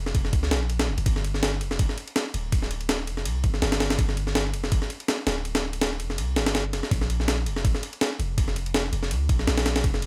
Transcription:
Already playing: 808-style bass F1
0.06 snare
0.15 808-style bass F1, kick, ride
0.25 snare
0.33 808-style bass D2, kick, ride
0.43 snare
0.51 808-style bass A#1, snare, ride
0.70 ride
0.79 snare, ride
0.88 808-style bass F1
0.98 808-style bass F1, ride
1.06 808-style bass G1, kick, ride
1.16 snare
1.24 ride
1.34 snare
1.43 snare, ride
1.61 808-style bass F1, ride
1.71 snare
1.79 808-style bass G1, kick, ride
1.89 snare
1.98 ride
2.08 ride
2.16 snare, ride
2.34 808-style bass D1, ride
2.52 kick, ride
2.62 snare
2.71 ride
2.81 ride
2.89 snare, ride
3.07 808-style bass F1, ride
3.17 snare
3.25 808-style bass C2, ride
3.44 808-style bass G1, kick, ride
3.54 snare
3.62 808-style bass G1, snare, ride
3.72 snare, ride
3.80 snare, ride
3.90 snare, ride
3.99 808-style bass G1, kick, ride
4.09 snare
4.17 ride
4.27 snare
4.35 snare, ride
4.54 808-style bass F1, ride
4.64 snare
4.72 808-style bass G1, kick, ride
4.82 snare
4.90 ride
5.00 ride
5.08 snare, ride
5.27 808-style bass D1, snare, ride
5.45 ride
5.55 snare, ride
5.73 ride
5.81 snare, ride
6.00 808-style bass F1, ride
6.10 snare
6.18 808-style bass C2, ride
6.36 808-style bass G1, snare, ride
6.46 snare, ride
6.55 snare, ride
6.73 808-style bass F1, snare, ride
6.83 snare
6.91 808-style bass A#1, kick, ride
7.01 snare
7.10 ride
7.20 snare
7.28 snare, ride
7.46 808-style bass F1, ride
7.56 snare
7.65 808-style bass A#1, kick, ride
7.75 snare
7.83 ride
7.93 ride
8.01 snare, ride
8.19 808-style bass F1, ride
8.38 kick, ride
8.48 snare
8.56 ride
8.66 ride
8.74 snare, ride
8.93 808-style bass F1, ride
9.03 snare
9.11 808-style bass D2, ride
9.29 808-style bass A#1, kick, ride
9.39 snare
9.47 808-style bass A#1, snare, ride
9.58 snare, ride
9.66 snare, ride
9.76 snare, ride
9.84 808-style bass F1, kick, ride
9.94 snare
10.02 ride

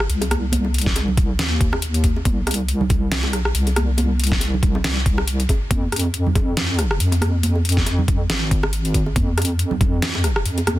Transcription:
0.00 cross-stick
0.10 wobble bass C2, closed hi-hat
0.21 closed hi-hat, high bongo
0.31 cross-stick, closed hi-hat, high conga
0.52 closed hi-hat, high conga
0.65 high bongo
0.74 closed hi-hat
0.78 closed hi-hat
0.82 closed hi-hat
0.86 kick, snare
0.96 closed hi-hat, high bongo
1.08 low conga
1.17 kick, closed hi-hat, low conga
1.39 wobble bass D#2, snare, closed hi-hat, high bongo
1.61 kick, closed hi-hat
1.73 cross-stick, high bongo
1.82 closed hi-hat
1.94 closed hi-hat
2.04 kick, closed hi-hat
2.16 high bongo
2.25 wobble bass C2, kick, closed hi-hat, high conga
2.47 cross-stick, closed hi-hat, high bongo
2.51 closed hi-hat
2.54 closed hi-hat
2.69 closed hi-hat
2.81 low conga
2.90 wobble bass C2, kick, closed hi-hat, high bongo, low conga
3.12 snare, closed hi-hat
3.23 high bongo
3.33 wobble bass B1, cross-stick, closed hi-hat
3.45 cross-stick
3.55 wobble bass C2, closed hi-hat
3.67 closed hi-hat, high bongo
3.76 cross-stick, closed hi-hat, high conga
3.97 closed hi-hat, high bongo, high conga
4.20 closed hi-hat
4.24 closed hi-hat
4.27 closed hi-hat
4.32 kick, snare
4.40 closed hi-hat, high bongo
4.54 low conga
4.63 kick, closed hi-hat, low conga
4.75 high bongo
4.84 wobble bass C2, snare, closed hi-hat
5.06 kick, closed hi-hat
5.18 cross-stick, high bongo
5.28 closed hi-hat
5.40 closed hi-hat
5.49 kick, closed hi-hat, high bongo
5.71 wobble bass F2, kick, closed hi-hat, high conga
5.92 cross-stick, closed hi-hat
5.96 closed hi-hat
6.00 closed hi-hat
6.04 high bongo
6.14 closed hi-hat
6.27 low conga
6.35 wobble bass F2, kick, closed hi-hat, high bongo, low conga
6.57 snare, closed hi-hat
6.79 cross-stick, closed hi-hat, high bongo
6.91 cross-stick
7.00 wobble bass F2, closed hi-hat
7.12 closed hi-hat, high bongo
7.21 cross-stick, closed hi-hat, high conga
7.43 closed hi-hat, high conga
7.56 high bongo
7.65 closed hi-hat
7.69 closed hi-hat
7.72 closed hi-hat
7.77 kick, snare
7.86 closed hi-hat, high bongo
7.99 low conga
8.08 kick, closed hi-hat, low conga
8.30 wobble bass G#1, snare, closed hi-hat, high bongo
8.51 kick, closed hi-hat
8.63 cross-stick, high bongo
8.73 closed hi-hat
8.85 closed hi-hat
8.94 kick, closed hi-hat
9.06 high bongo
9.16 wobble bass F2, kick, closed hi-hat, high conga
9.38 cross-stick, closed hi-hat, high bongo
9.42 closed hi-hat
9.45 closed hi-hat
9.59 closed hi-hat
9.71 low conga
9.81 wobble bass F2, kick, closed hi-hat, high bongo, low conga
10.02 snare, closed hi-hat
10.15 high bongo
10.24 cross-stick, closed hi-hat
10.36 cross-stick
10.45 wobble bass F2, closed hi-hat
10.58 closed hi-hat, high bongo
10.67 cross-stick, closed hi-hat, high conga

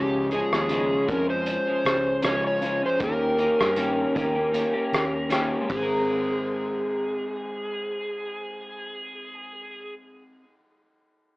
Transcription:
Already playing: fingered electric bass C#2, clean electric guitar C#3 F3 G#3 C#4, electric slide guitar G4
0.31 clean electric guitar C#3 F3 G#3 C#4, electric slide guitar G#4, closed hi-hat
0.52 fingered electric bass D#2, clean electric guitar G#3 C#4, cross-stick
0.56 clean electric guitar F3
0.69 clean electric guitar C#3 F3 G#3 C#4, closed hi-hat
1.08 fingered electric bass F2, clean electric guitar C#3 F3 G#3 C#4, electric slide guitar A#4, kick, closed hi-hat
1.29 clean electric guitar G#3 C#4, electric slide guitar C5
1.33 clean electric guitar F3
1.46 closed hi-hat
1.67 clean electric guitar F3 G#3 C#4
1.85 fingered electric bass C#2, cross-stick, closed hi-hat
2.22 clean electric guitar C#3 F3 G#3 C#4, electric slide guitar C#5, cross-stick, closed hi-hat
2.47 electric slide guitar C#5
2.61 clean electric guitar C#3 F3 G#3, closed hi-hat
2.65 clean electric guitar C#4
2.81 clean electric guitar F3 G#3 C#4
2.86 electric slide guitar C5
2.99 fingered electric bass D#2, clean electric guitar D#3 A#3 C#4 G4, kick, closed hi-hat
3.04 electric slide guitar A#4
3.37 clean electric guitar D#3 A#3 C#4 G4, closed hi-hat
3.59 fingered electric bass G2, clean electric guitar A#3 C#4 G4, cross-stick
3.76 clean electric guitar D#3 A#3 C#4 G4, closed hi-hat
4.14 fingered electric bass D#2, clean electric guitar D#3 A#3 C#4 G4, kick, closed hi-hat
4.35 clean electric guitar A#3 C#4 G4
4.51 clean electric guitar D#3 A#3 C#4 G4, closed hi-hat
4.73 clean electric guitar A#3 C#4 G4
4.93 fingered electric bass D#2, cross-stick, closed hi-hat
5.29 clean electric guitar D#3 A#3 C#4 G4, cross-stick, closed hi-hat
5.61 clean electric guitar G#3
5.70 fingered electric bass G#1, clean electric guitar C4, electric slide guitar G#4, kick, ride
5.83 clean electric guitar A#4

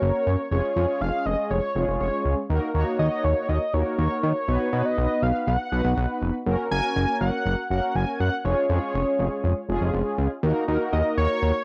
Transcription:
Already playing: analog polysynth A#3 C#4 F#4 A#4
0.02 analog synth bass F#1, analog synth lead C#5
0.27 analog synth bass F#2
0.51 analog synth bass F1, analog polysynth G#3 C#4 F4 G#4, analog synth lead C#5
0.76 analog synth bass F2, analog polysynth G#3 C#4 F4 G#4
1.01 analog synth bass F1, analog synth lead F5
1.26 analog synth bass F1, analog synth lead D#5
1.51 analog synth bass F1, analog synth lead C#5
1.75 analog synth bass F1, analog polysynth G#3 C#4 F4 G#4
1.88 analog synth bass F1
2.00 analog synth bass F1, analog synth lead C#5
2.25 analog synth bass C#2
2.50 analog synth bass D#2, analog polysynth A#3 D#4 F#4 A#4
2.74 analog synth bass D#2, analog polysynth A#3 D#4 F#4 C#5
2.99 analog synth bass D#2, analog synth lead D#5
3.24 analog synth bass D#2, analog synth lead C#5
3.49 analog synth bass D#2, analog synth lead D#5
3.74 analog synth bass D#2, analog polysynth A#3 D#4 F#4 A#4, analog synth lead C#5
3.98 analog synth bass D#2, analog synth lead C#5
4.23 analog synth bass D#3, analog synth lead C#5
4.48 analog synth bass B1, analog polysynth B3 D#4 F#4 B4
4.73 analog synth bass B2, analog polysynth B3 D#4 F#4 B4
4.85 analog synth lead D#5
4.98 analog synth bass B1
5.22 analog synth bass B1, analog synth lead F5
5.47 analog synth bass B1, analog synth lead F#5
5.72 analog synth bass B1, analog polysynth B3 D#4 F#4 B4
5.84 analog synth bass B1
5.97 analog synth bass B1
6.22 analog synth bass F1
6.46 analog synth bass F#1, analog polysynth A#3 C#4 F#4 A#4
6.71 analog synth bass F#1, analog polysynth A#3 C#4 F#4 A#4, analog synth lead G#5
6.96 analog synth bass F#1
7.21 analog synth bass F#1, analog synth lead F#5
7.46 analog synth bass F#1
7.70 analog synth bass F#1, analog polysynth A#3 C#4 F#4 A#4, analog synth lead F#5
7.95 analog synth bass F#1, analog synth lead G#5
8.20 analog synth bass F#2, analog synth lead F#5
8.45 analog synth bass F1, analog polysynth G#3 C#4 F4 G#4, analog synth lead C#5
8.70 analog synth bass F2, analog polysynth G#3 C#4 F4 G#4
8.94 analog synth bass F1
9.19 analog synth bass F1
9.44 analog synth bass F1
9.69 analog synth bass F1, analog polysynth G#3 C#4 F4 G#4
9.81 analog synth bass F1
9.94 analog synth bass F1
10.18 analog synth bass C#2
10.43 analog synth bass D#2, analog polysynth A#3 D#4 F#4 A#4
10.68 analog synth bass D#2, analog polysynth A#3 D#4 F#4 A#4
10.93 analog synth bass D#2, analog synth lead D#5
11.18 analog synth bass D#2, analog synth lead C#5
11.42 analog synth bass D#2

